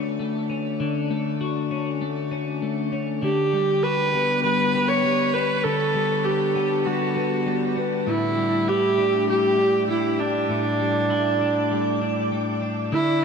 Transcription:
Already playing: D3 A3 C#4 F#4
0.19 A3
0.50 C#4
0.80 D3
1.11 A3
1.41 F#4
1.71 C#4
2.01 A3
2.31 C#4
2.62 A3
2.92 C#4
3.22 D3 G4
3.53 G3
3.83 F#4 B4
4.14 B3
4.44 G3 B4
4.74 B3
4.88 C#5
5.04 G3
5.34 B3 B4
5.64 D3 A4
5.95 G3
6.24 G4
6.55 B3
6.86 G3 F#4
7.16 B3
7.46 G3
7.77 B3
8.07 A2 E4
8.37 G3
8.67 E4 G4
8.98 D4
9.28 G3 G4
9.58 D4
9.88 G3 E4
10.19 D4
10.49 A2
10.80 G3
11.10 E4
11.41 D4
11.71 G3
12.01 D4
12.32 G3
12.62 D4
12.92 D3 E4

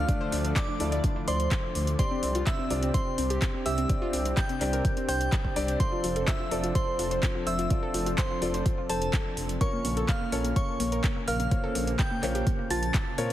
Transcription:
Already playing: D3 F3 A3 D5 F5 F6
0.09 A3 D4 F4 D5, kick, closed hi-hat
0.21 C5
0.32 D2 D4, open hi-hat
0.45 D4, closed hi-hat
0.56 D5 D6, kick, clap, closed hi-hat
0.68 D4
0.80 D2 A3 D4 E4 F4 D5, open hi-hat
0.92 D5, closed hi-hat
1.04 D4, kick, closed hi-hat
1.16 D4
1.28 D2 C5 D5 C6, open hi-hat
1.40 closed hi-hat
1.51 kick, clap, closed hi-hat
1.75 D2, open hi-hat
1.87 closed hi-hat
1.99 C3 C4 D4 G4 C5 D5 C6, kick, closed hi-hat
2.11 C4
2.23 C2 C4, open hi-hat
2.35 F4, closed hi-hat
2.47 C4 E5 E6, kick, clap, closed hi-hat
2.59 C4
2.70 C2 C4 D4 F4 G4 D5, open hi-hat
2.83 C4, closed hi-hat
2.94 C4 C5 C6, kick, closed hi-hat
3.18 C2 C4, open hi-hat
3.30 G4, closed hi-hat
3.42 C4, kick, clap, closed hi-hat
3.54 C4
3.66 C2 G4 E5 E6, open hi-hat
3.78 C4, closed hi-hat
3.89 C4 D4 G4 D5, kick, closed hi-hat
4.02 F4
4.13 C2 C4, open hi-hat
4.25 C4, closed hi-hat
4.37 G5 G6, kick, clap, closed hi-hat
4.49 C4, closed hi-hat
4.61 C2 C4 D4 G4 D5, clap, open hi-hat
4.73 A#4, closed hi-hat
4.85 C4, kick, closed hi-hat
4.97 C4, closed hi-hat
5.08 C2 C5 G5 G6, open hi-hat
5.21 closed hi-hat
5.32 kick, clap, closed hi-hat
5.45 kick
5.56 C2 C4 D4 G4 D5, open hi-hat
5.68 closed hi-hat
5.80 F3 C4 F4 A4 C5 D5 C6, kick, closed hi-hat
5.92 F4
6.04 F1 F4, open hi-hat
6.16 A4, closed hi-hat
6.28 F4 E5 E6, kick, clap, closed hi-hat
6.40 F4
6.51 F1 C4 F4 A4 D5, open hi-hat
6.64 F4, closed hi-hat
6.75 F4 C5 C6, kick, closed hi-hat
6.99 F1 F4, open hi-hat
7.11 C5, closed hi-hat
7.23 F4, kick, clap, closed hi-hat
7.35 F4
7.47 F1 C5 E5 E6, open hi-hat
7.59 F4, closed hi-hat
7.70 C4 F4 A4 D5, kick, closed hi-hat
7.83 A4
7.94 F1 F4, open hi-hat
8.06 F4, closed hi-hat
8.18 C5 C6, kick, clap, closed hi-hat
8.30 F4
8.42 F1 C4 F4 A4 D5, open hi-hat
8.54 C5, closed hi-hat
8.66 F4, kick, closed hi-hat
8.78 F4
8.89 F1 A4 C5 A5, open hi-hat
9.02 closed hi-hat
9.13 kick, clap, closed hi-hat
9.37 F1, open hi-hat
9.49 closed hi-hat
9.61 C#3 A#3 C#4 F4 A#4 C#5 C#6, kick, closed hi-hat
9.73 A#3
9.85 A#1 A#3, open hi-hat
9.97 A4, closed hi-hat
10.09 A#3 F5 F6, kick, clap, closed hi-hat
10.21 A#3
10.32 A#1 C#4 F4 A4 A#4 C#5, open hi-hat
10.45 A#3, closed hi-hat
10.56 A#3 C#5 C#6, kick, closed hi-hat
10.80 A#1 A#3, open hi-hat
10.92 A#4, closed hi-hat
11.04 kick, clap, closed hi-hat
11.16 A#3
11.28 A#1 A#4 F5 F6, open hi-hat
11.40 A#3, closed hi-hat
11.51 A#3 F4 A#4 C5 C#5, kick, closed hi-hat
11.64 A4
11.75 A#1 A#3, open hi-hat
11.87 A#3, closed hi-hat
11.99 G5 G6, kick, clap, closed hi-hat
12.11 A#3
12.23 A#1 A#3 F4 A#4 C5 C#5, clap, open hi-hat
12.35 G4, closed hi-hat
12.47 A#3, kick, closed hi-hat
12.59 A#3
12.70 A#1 F4 A5 A6, open hi-hat
12.83 closed hi-hat
12.94 kick, clap, closed hi-hat
13.18 A#2 C4 F4 A#4 C#5, open hi-hat

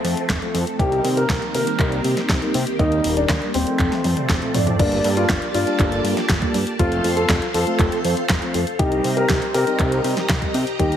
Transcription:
Already playing: F3 A3 C4 A4
0.04 F2 F3 A3 C4 A4, open hi-hat
0.17 closed hi-hat
0.29 F1, kick, snare, clap, closed hi-hat
0.42 F3 A3 C4 A4, closed hi-hat
0.54 F2, open hi-hat
0.67 closed hi-hat
0.79 C2 D#3 G3 A#3 C4 D#4 G4 A#4, kick, closed hi-hat
0.92 closed hi-hat
1.04 C3, open hi-hat
1.17 G3 C4 D#4 A#4, closed hi-hat
1.29 C2, kick, snare, clap, closed hi-hat
1.42 closed hi-hat
1.55 C3 A#4, open hi-hat
1.67 G3 C4 D#4 A#4, closed hi-hat
1.79 C2, kick, clap, closed hi-hat
1.92 closed hi-hat
2.04 C3 G3 C4 D#4 A#4, open hi-hat
2.17 snare, closed hi-hat
2.29 C2, kick, snare, clap, closed hi-hat
2.42 G3 C4 D#4 A#4, closed hi-hat
2.54 C3, open hi-hat
2.67 closed hi-hat
2.79 D#2 G3 A#3 D#4 A#4, kick, closed hi-hat
2.92 closed hi-hat
3.04 D#1, open hi-hat
3.17 G3 A#3 D4 D#4 A#4, closed hi-hat
3.29 D#2, kick, snare, clap, closed hi-hat
3.42 closed hi-hat
3.54 D#1 C4, open hi-hat
3.67 F3 A3 C4 A4, closed hi-hat
3.79 F1 F3 A3 C4 A4, kick, clap, closed hi-hat, high tom
3.92 snare, closed hi-hat, high tom
4.04 F2, open hi-hat, high tom
4.17 F3 A3 C4 D5, closed hi-hat, mid tom
4.29 F1, kick, snare, clap, closed hi-hat, mid tom
4.42 F3 A3 C4 A4, closed hi-hat
4.54 F2 F3 A3 C4 D5, mid tom, open hi-hat
4.67 closed hi-hat, mid tom
4.79 G1 G3 A#3 D4 G4 A4 D5 A5, kick, closed hi-hat, crash
4.92 closed hi-hat
5.04 G2, open hi-hat
5.17 G3 A#3 D4 F4 A4, closed hi-hat
5.29 G1, kick, snare, clap, closed hi-hat
5.42 closed hi-hat
5.54 G2 D4 F4, open hi-hat
5.67 G3 A#3 D4 A4, closed hi-hat
5.79 G1, kick, clap, closed hi-hat
5.92 closed hi-hat
6.04 G2 G3 A#3 D4 A4, open hi-hat
6.17 snare, closed hi-hat
6.29 G1, kick, snare, clap, closed hi-hat
6.42 G3 A#3 D4 A4, kick, closed hi-hat
6.54 G2, open hi-hat
6.67 closed hi-hat
6.79 F1 F3 A3 C4 F4 A4 C5 F5 C6, kick, closed hi-hat
6.92 closed hi-hat
7.04 F2, open hi-hat
7.17 F3 A3 C4 F4 A4, closed hi-hat
7.29 F1, kick, snare, clap, closed hi-hat
7.42 closed hi-hat
7.54 F2 F4 A4, open hi-hat
7.67 F3 A3 C4 A4, closed hi-hat
7.79 F1, kick, clap, closed hi-hat
7.92 closed hi-hat
8.04 F2 F3 A3 C4 A4, open hi-hat
8.17 closed hi-hat
8.29 F1, kick, snare, clap, closed hi-hat
8.42 F3 A3 C4 A4, closed hi-hat
8.54 F2, open hi-hat
8.67 closed hi-hat
8.79 C2 G3 C4 D#4 G4 A#4 C5 D#5 A#5, kick, closed hi-hat
8.92 closed hi-hat
9.04 C3, open hi-hat
9.17 G3 C4 D#4 G4 A#4, closed hi-hat
9.29 C2, kick, snare, clap, closed hi-hat
9.42 closed hi-hat
9.54 C3 G4 A#4, open hi-hat
9.67 G3 C4 D#4 A#4, closed hi-hat
9.79 C2, kick, clap, closed hi-hat
9.92 closed hi-hat
10.04 C3 G3 C4 D#4 A#4, open hi-hat
10.17 snare, closed hi-hat
10.29 C2, kick, snare, clap, closed hi-hat
10.42 G3 C4 D#4 A#4, kick, closed hi-hat
10.54 C3, open hi-hat
10.67 closed hi-hat
10.79 D#2 G3 A#3 D#4 G4 A#4, kick, closed hi-hat
10.92 closed hi-hat

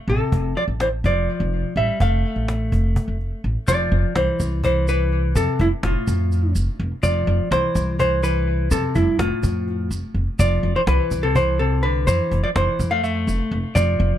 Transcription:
0.08 A1 C3 A4, cajon slap
0.32 F1, cajon bass
0.56 F3 D5, cajon slap
0.68 A1
0.80 E3 C5, cajon slap
1.04 F1 F3 D5, cajon bass
1.28 cajon slap
1.40 F1
1.53 cajon slap
1.76 A1 G3 E5, cajon slap
2.00 F1 A3 F5, cajon bass
2.25 cajon slap
2.36 A1
2.48 cajon slap
2.72 F1, cajon bass
2.96 cajon bass
3.08 F1
3.20 cajon slap
3.44 A1, cajon slap
3.68 F1 F3 D5, cajon bass, shaker
3.92 F1, cajon slap
4.16 C2 E3 C5, cajon slap
4.40 C2, cajon bass, cajon slap, shaker
4.64 E3 C5, cajon bass, shaker
4.88 E3 B4, cajon slap, shaker
5.12 cajon slap
5.35 F2 C3 A4, cajon bass, shaker
5.59 F1 G2 E4, cajon bass
5.83 F1 A2 F4, cajon slap
6.07 F2, cajon bass, shaker
6.31 cajon slap, shaker
6.55 F1, cajon slap, shaker
6.80 F1, cajon slap
7.03 F1 F3 D5, cajon bass, shaker
7.27 F1, cajon slap
7.51 C2 E3 C5, cajon slap
7.75 C2, cajon bass, cajon slap, shaker
7.99 E3 C5, cajon bass, shaker
8.23 E3 B4, cajon slap, shaker
8.47 cajon slap
8.71 F2 C3 A4, cajon bass, shaker
8.95 F1 G2 E4, cajon bass, cajon slap, shaker
9.19 F1 A2 F4, cajon slap
9.43 F2, cajon bass, shaker
9.68 cajon slap
9.91 F1, cajon slap, shaker
10.14 F1, cajon slap
10.39 F1 F3 D5, cajon bass, shaker
10.63 F1, cajon slap
10.76 E3 C5
10.87 C2 E3 B4, cajon slap
11.11 C2, cajon bass, shaker
11.23 C3 A4
11.35 E3 C5, cajon bass, shaker
11.59 C3 A4
11.83 D3 B4
12.07 F2 E3 C5, cajon bass, shaker
12.31 F1, cajon bass
12.44 F3 D5
12.56 F1 E3 C5, cajon slap
12.79 F2, cajon bass, shaker
12.91 A3 F5
13.03 A3 E5, cajon slap, shaker
13.27 F1, shaker
13.51 F1, cajon slap
13.75 F1 F3 D5, cajon bass, shaker
14.00 F1, cajon slap

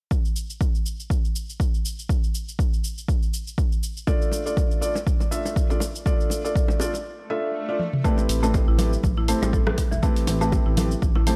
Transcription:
0.11 kick, shaker
0.25 shaker
0.36 shaker
0.50 shaker
0.61 kick, shaker
0.75 shaker
0.86 shaker
1.00 shaker
1.10 kick, shaker
1.25 shaker
1.36 shaker
1.49 shaker
1.60 kick, shaker
1.74 shaker
1.85 shaker
1.99 shaker
2.09 kick, shaker
2.24 shaker
2.35 shaker
2.48 shaker
2.59 kick, shaker
2.73 shaker
2.84 shaker
2.98 shaker
3.08 kick, shaker
3.22 shaker
3.34 shaker
3.47 shaker
3.58 kick, shaker
3.72 shaker
3.83 shaker
3.97 shaker
4.07 A3 D4 F4 A4 D5, kick, low bongo, shaker
4.22 shaker
4.32 low bongo, shaker
4.46 A3 D4 F4 A4 D5, shaker
4.57 kick, low bongo, shaker
4.71 shaker
4.81 A3 D4 F4 A4 D5, shaker
4.95 low bongo, shaker
5.07 kick, shaker
5.20 low bongo, shaker
5.31 A3 D4 F4 A4 E5, shaker
5.45 low bongo, shaker
5.56 kick, shaker
5.70 A3 D4 F4 A4 D5, high bongo, shaker
5.80 low bongo, shaker
5.95 shaker
6.06 A3 D4 F4 A4 D5, kick, low bongo, shaker
6.20 shaker
6.30 low bongo, shaker
6.44 A3 D4 F4 A4 D5, shaker
6.56 kick, shaker
6.68 low bongo, shaker
6.80 A3 D4 F4 A4 D5, high bongo, shaker
6.94 low bongo, shaker
7.05 swell
7.30 A3 D4 F4 A4 E5
7.69 A3 D4 F4 A4 D5
7.80 high tom
7.93 mid tom
8.04 A3 C4 E4 G4 A4 B4, kick, high conga, shaker
8.18 low bongo, shaker
8.29 A1, open hi-hat, shaker
8.43 A3 C4 E4 G4 A4 B4, high bongo, high conga, shaker
8.54 kick, high bongo, low bongo, shaker
8.68 A1 E4
8.78 C4 E4 G4 A4 B4, open hi-hat, low bongo, high conga, low conga, shaker
8.93 shaker
9.03 A1, kick, low bongo, low conga, shaker
9.17 E4, high conga
9.28 A3 C4 E4 G4 A4 C5, open hi-hat, shaker
9.42 A1 G3, high bongo, low bongo, shaker
9.53 A4, kick, shaker
9.67 C4 E4 G4 A4 B4, cross-stick, low bongo, low conga
9.78 kick, open hi-hat, shaker
9.91 E1 E3, low bongo, shaker
10.03 A3 C4 E4 G4 A4 B4, kick, high conga, shaker
10.16 open hi-hat, shaker
10.27 A1, open hi-hat, low bongo, shaker
10.41 A3 C4 E4 G4 A4 B4, high bongo, shaker
10.52 kick, high bongo, low bongo, shaker
10.66 A1 E4
10.77 C4 E4 G4 A4 B4, open hi-hat, low bongo, high conga, low conga, shaker
10.91 shaker
11.02 A1, kick, shaker
11.15 E4, low bongo
11.27 A3 C4 E4 G4 A4 C5, open hi-hat, low conga, shaker

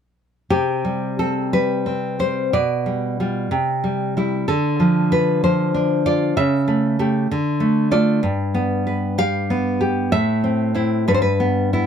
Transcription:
0.50 C3 G4
0.85 G3
1.19 C4 A4
1.53 G3 B4
1.86 C4
2.19 G3 C5
2.53 B2 D5
2.86 G3
3.20 G3 F4
3.51 C3
3.84 G3
4.17 G3 E4
4.48 D3 A4
4.80 F3
5.12 F4 B4
5.44 F3 C5
5.74 D4
6.06 F4 D5
6.37 C#3 E5
6.68 A3
6.99 A3 G4
7.31 D3
7.60 A3
7.91 A3 F4 D5
8.23 G2
8.54 B3
8.87 B4
9.18 G4 F5
9.50 B3
9.81 G4
10.12 A2 E5
10.44 C4
10.75 C4 E4
11.08 G2 B4
11.14 C5
11.22 B4
11.40 B3
11.73 B3 E4

